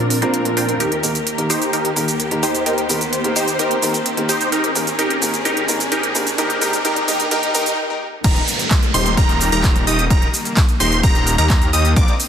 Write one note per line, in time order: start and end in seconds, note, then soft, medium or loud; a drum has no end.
0.00 0.76 A#2 medium
0.00 0.76 F3 medium
0.00 0.19 C4 loud
0.00 0.76 C4 medium
0.00 0.19 D4 medium
0.00 0.76 D4 medium
0.00 0.19 F4 medium
0.00 0.19 A#4 medium
0.00 2.62 A#4 medium
0.00 0.19 D5 loud
0.00 riser medium
0.10 open hi-hat loud
0.21 0.42 A#2 loud
0.21 0.42 C4 medium
0.21 0.54 C4 medium
0.21 0.42 D4 medium
0.21 0.54 D4 medium
0.21 0.54 F4 medium
0.21 0.43 F4 medium
0.21 0.54 A#4 medium
0.21 0.43 A#4 loud
0.21 0.54 C5 medium
0.21 closed hi-hat soft
0.34 closed hi-hat medium
0.45 0.65 A#2 medium
0.45 0.66 C4 medium
0.45 0.66 D4 medium
0.45 0.66 F4 medium
0.45 0.66 A#4 medium
0.45 closed hi-hat soft
0.57 0.75 C4 medium
0.57 0.75 D4 medium
0.57 0.75 F4 medium
0.57 0.75 A#4 medium
0.57 0.75 G5 medium
0.57 open hi-hat loud
0.68 0.78 C4 medium
0.68 0.79 D4 medium
0.68 0.79 F4 medium
0.68 0.79 A#4 medium
0.68 closed hi-hat soft
0.80 4.49 D#2 medium
0.80 7.74 D#3 medium
0.80 7.74 A#3 medium
0.80 0.98 D#4 medium
0.80 4.49 G4 medium
0.80 0.98 G4 medium
0.80 0.98 A#4 medium
0.80 closed hi-hat medium
0.80 shaker soft
0.92 closed hi-hat soft
1.03 1.11 D#3 medium
1.03 1.12 A#3 medium
1.03 1.12 D#4 medium
1.03 1.12 G4 medium
1.03 1.12 A#4 medium
1.03 open hi-hat loud
1.03 shaker medium
1.15 closed hi-hat soft
1.15 shaker soft
1.27 closed hi-hat medium
1.27 shaker soft
1.38 1.46 D#3 medium
1.38 1.46 A#3 medium
1.38 1.47 D#4 medium
1.38 1.47 G4 medium
1.38 1.47 A#4 medium
1.38 closed hi-hat soft
1.50 1.70 D#4 medium
1.50 1.70 G4 medium
1.50 1.70 C5 medium
1.50 open hi-hat loud
1.50 shaker medium
1.62 closed hi-hat soft
1.62 shaker soft
1.73 1.91 D#4 medium
1.73 1.91 G4 medium
1.73 1.91 A#4 medium
1.73 closed hi-hat medium
1.73 shaker soft
1.85 closed hi-hat soft
1.96 2.04 D#3 medium
1.96 2.05 A#3 medium
1.96 2.05 D#4 medium
1.96 2.05 G4 medium
1.96 2.05 A#4 medium
1.96 open hi-hat loud
1.96 shaker medium
2.08 closed hi-hat soft
2.08 shaker soft
2.20 closed hi-hat medium
2.20 shaker soft
2.31 2.39 D#3 medium
2.31 2.39 A#3 medium
2.31 2.40 D#4 medium
2.31 2.40 G4 medium
2.31 2.40 A#4 medium
2.31 closed hi-hat soft
2.43 2.63 D#4 medium
2.43 2.63 G4 medium
2.43 2.63 C5 loud
2.43 open hi-hat loud
2.43 shaker medium
2.55 closed hi-hat soft
2.55 shaker soft
2.66 2.84 D#4 medium
2.66 2.84 G4 medium
2.66 2.84 A#4 medium
2.66 4.50 C5 medium
2.66 closed hi-hat medium
2.66 shaker soft
2.78 closed hi-hat soft
2.89 2.97 D#3 medium
2.89 2.98 A#3 medium
2.89 2.98 D#4 medium
2.89 2.98 G4 medium
2.89 2.98 A#4 medium
2.89 open hi-hat loud
2.89 shaker medium
3.01 closed hi-hat soft
3.01 shaker soft
3.13 closed hi-hat medium
3.13 shaker soft
3.24 3.32 D#3 medium
3.24 3.33 A#3 medium
3.24 3.33 D#4 medium
3.24 3.33 G4 medium
3.24 3.33 A#4 medium
3.24 closed hi-hat soft
3.36 3.56 D#4 medium
3.36 3.56 G4 medium
3.36 3.56 C5 loud
3.36 open hi-hat loud
3.36 shaker medium
3.48 closed hi-hat soft
3.48 shaker soft
3.59 3.77 D#4 medium
3.59 3.77 G4 medium
3.59 3.77 A#4 medium
3.59 closed hi-hat medium
3.59 shaker soft
3.71 closed hi-hat soft
3.82 3.91 D#3 medium
3.82 3.91 A#3 medium
3.82 3.91 D#4 medium
3.82 3.91 G4 medium
3.82 3.91 A#4 medium
3.82 open hi-hat loud
3.82 shaker medium
3.94 closed hi-hat soft
3.94 shaker soft
4.06 closed hi-hat medium
4.06 shaker soft
4.17 4.25 D#3 medium
4.17 4.26 A#3 medium
4.17 4.26 D#4 medium
4.17 4.26 G4 medium
4.17 4.26 A#4 medium
4.17 closed hi-hat soft
4.29 4.49 D#4 loud
4.29 4.49 G4 medium
4.29 4.49 C5 loud
4.29 open hi-hat loud
4.29 shaker medium
4.41 closed hi-hat soft
4.41 shaker soft
4.52 7.75 G#2 medium
4.52 7.75 C4 medium
4.52 4.70 D#4 medium
4.52 4.70 G4 medium
4.52 7.75 G#4 medium
4.52 4.70 A#4 medium
4.52 closed hi-hat medium
4.52 shaker soft
4.64 closed hi-hat soft
4.75 4.84 D#3 medium
4.75 4.84 A#3 medium
4.75 4.84 D#4 medium
4.75 4.84 G4 medium
4.75 4.84 A#4 medium
4.75 open hi-hat loud
4.75 shaker medium
4.87 closed hi-hat soft
4.87 shaker soft
4.99 5.17 D#4 medium
4.99 5.17 G4 medium
4.99 5.17 A#4 medium
4.99 closed hi-hat medium
4.99 shaker soft
5.10 closed hi-hat soft
5.21 5.30 D#3 medium
5.21 5.30 A#3 medium
5.21 5.30 D#4 medium
5.21 5.31 G4 medium
5.21 5.31 A#4 medium
5.21 open hi-hat loud
5.21 shaker medium
5.34 closed hi-hat soft
5.34 shaker soft
5.45 5.63 D#4 medium
5.45 5.63 G4 medium
5.45 5.63 A#4 medium
5.45 closed hi-hat medium
5.45 shaker soft
5.57 closed hi-hat soft
5.68 5.77 D#3 medium
5.68 5.77 A#3 medium
5.68 5.77 D#4 medium
5.68 5.77 G4 medium
5.68 5.77 A#4 medium
5.68 open hi-hat loud
5.68 shaker medium
5.80 closed hi-hat soft
5.80 shaker soft
5.92 6.10 D#4 medium
5.92 6.10 G4 medium
5.92 6.10 A#4 medium
5.92 closed hi-hat medium
5.92 shaker soft
6.03 closed hi-hat soft
6.14 6.23 D#3 medium
6.14 6.23 A#3 medium
6.14 6.23 D#4 medium
6.14 6.24 G4 medium
6.14 6.24 A#4 medium
6.14 open hi-hat loud
6.14 shaker medium
6.27 closed hi-hat soft
6.27 shaker soft
6.38 6.46 D#3 medium
6.38 6.46 A#3 medium
6.38 6.56 D#4 medium
6.38 6.47 D#4 medium
6.38 6.56 G4 medium
6.38 6.47 G4 medium
6.38 6.56 A#4 medium
6.38 6.47 A#4 medium
6.38 closed hi-hat medium
6.38 shaker soft
6.50 closed hi-hat soft
6.61 6.70 D#3 medium
6.61 6.70 A#3 medium
6.61 6.70 D#4 medium
6.61 6.79 D#4 medium
6.61 6.79 G4 medium
6.61 6.70 G4 medium
6.61 6.79 A#4 medium
6.61 6.70 A#4 medium
6.61 open hi-hat loud
6.61 shaker medium
6.73 closed hi-hat soft
6.73 shaker soft
6.84 6.93 D#3 medium
6.84 6.93 A#3 medium
6.84 7.03 D#4 medium
6.84 6.93 D#4 medium
6.84 7.03 G4 medium
6.84 6.93 G4 medium
6.84 7.03 A#4 medium
6.84 6.93 A#4 loud
6.84 closed hi-hat medium
6.84 shaker soft
6.96 closed hi-hat soft
7.08 7.16 D#3 medium
7.08 7.16 A#3 medium
7.08 7.26 D#4 medium
7.08 7.16 D#4 medium
7.08 7.26 G4 medium
7.08 7.17 G4 medium
7.08 7.26 A#4 medium
7.08 7.17 A#4 medium
7.08 open hi-hat loud
7.08 shaker medium
7.20 closed hi-hat soft
7.20 shaker soft
7.31 7.39 D#3 medium
7.31 7.40 A#3 medium
7.31 7.49 D#4 medium
7.31 7.40 D#4 medium
7.31 7.49 G4 medium
7.31 7.40 G4 medium
7.31 7.49 A#4 medium
7.31 7.40 A#4 medium
7.31 closed hi-hat medium
7.31 shaker soft
7.43 closed hi-hat soft
7.54 7.63 D#3 medium
7.54 7.63 A#3 medium
7.54 7.63 D#4 medium
7.54 7.72 D#4 medium
7.54 7.72 G4 medium
7.54 7.63 G4 medium
7.54 7.72 A#4 medium
7.54 7.63 A#4 loud
7.54 open hi-hat loud
7.54 shaker medium
7.66 closed hi-hat soft
7.66 shaker soft
8.24 8.40 D#1 loud
8.24 11.93 D#3 medium
8.24 11.93 G3 medium
8.24 12.28 A#3 medium
8.24 8.42 D#4 medium
8.24 8.42 G4 medium
8.24 8.42 A#4 medium
8.24 8.42 A#5 medium
8.24 kick loud
8.24 closed hi-hat medium
8.24 ride medium
8.24 crash loud
8.24 downlifter medium
8.24 shaker soft
8.36 closed hi-hat soft
8.48 open hi-hat loud
8.48 shaker medium
8.59 closed hi-hat soft
8.59 shaker soft
8.71 kick loud
8.71 clap loud
8.71 closed hi-hat medium
8.71 ride medium
8.71 shaker soft
8.83 closed hi-hat soft
8.83 shaker soft
8.94 9.15 D#1 medium
8.94 9.15 D#4 loud
8.94 9.15 G4 medium
8.94 9.15 C5 loud
8.94 9.15 C6 loud
8.94 open hi-hat loud
8.94 shaker medium
9.06 closed hi-hat soft
9.06 shaker soft
9.17 9.50 D#1 medium
9.17 9.49 D#4 loud
9.17 9.50 G4 medium
9.17 9.49 A#4 loud
9.17 9.49 A#5 loud
9.17 kick loud
9.17 closed hi-hat medium
9.17 ride medium
9.17 shaker soft
9.29 closed hi-hat soft
9.29 shaker soft
9.41 open hi-hat loud
9.41 shaker medium
9.52 9.85 D#1 loud
9.52 9.84 D#4 medium
9.52 9.84 G4 medium
9.52 9.84 A#4 medium
9.52 9.84 A#5 medium
9.52 closed hi-hat soft
9.52 shaker soft
9.64 kick loud
9.64 clap loud
9.64 closed hi-hat medium
9.64 ride medium
9.64 shaker soft
9.76 closed hi-hat soft
9.76 shaker soft
9.87 10.08 D#1 medium
9.87 10.05 D#4 medium
9.87 10.05 G4 medium
9.87 10.05 D#5 medium
9.87 10.05 D#6 medium
9.87 open hi-hat loud
9.87 shaker medium
9.99 closed hi-hat soft
9.99 shaker soft
10.10 10.26 D#1 medium
10.10 10.28 D#4 medium
10.10 10.28 G4 medium
10.10 10.28 A#4 medium
10.10 10.28 A#5 medium
10.10 kick loud
10.10 closed hi-hat medium
10.10 ride medium
10.10 shaker soft
10.22 closed hi-hat soft
10.34 open hi-hat loud
10.34 shaker medium
10.45 closed hi-hat soft
10.45 shaker soft
10.57 kick loud
10.57 clap loud
10.57 closed hi-hat medium
10.57 ride medium
10.57 shaker soft
10.69 closed hi-hat soft
10.69 shaker soft
10.80 11.01 D#1 medium
10.80 11.01 D#4 medium
10.80 11.01 G4 medium
10.80 11.01 C5 loud
10.80 11.01 C6 loud
10.80 open hi-hat loud
10.80 shaker medium
10.92 closed hi-hat soft
10.92 shaker soft
11.03 11.36 D#1 loud
11.03 11.36 D#4 loud
11.03 11.36 G4 medium
11.03 11.36 A#4 loud
11.03 11.36 A#5 loud
11.03 kick loud
11.03 closed hi-hat medium
11.03 ride medium
11.03 shaker soft
11.15 closed hi-hat soft
11.15 shaker soft
11.27 open hi-hat loud
11.27 shaker medium
11.38 11.71 D#2 loud
11.38 11.70 D#4 medium
11.38 11.70 G4 medium
11.38 11.70 A#4 medium
11.38 11.70 A#5 medium
11.38 closed hi-hat soft
11.38 shaker soft
11.50 kick loud
11.50 clap loud
11.50 closed hi-hat medium
11.50 ride medium
11.50 shaker soft
11.62 closed hi-hat soft
11.62 shaker soft
11.73 11.94 D#2 loud
11.73 11.91 D#4 medium
11.73 11.91 G4 medium
11.73 11.91 D#5 medium
11.73 11.91 D#6 medium
11.73 open hi-hat loud
11.73 shaker medium
11.85 closed hi-hat soft
11.85 shaker soft
11.96 12.12 A#1 loud
11.96 12.28 D3 medium
11.96 12.28 C4 medium
11.96 12.14 C4 medium
11.96 12.14 D4 medium
11.96 12.14 F4 medium
11.96 12.14 A#4 medium
11.96 12.14 D5 medium
11.96 12.14 D6 medium
11.96 kick loud
11.96 closed hi-hat medium
11.96 ride medium
11.96 shaker soft
12.08 closed hi-hat soft
12.20 open hi-hat loud
12.20 shaker medium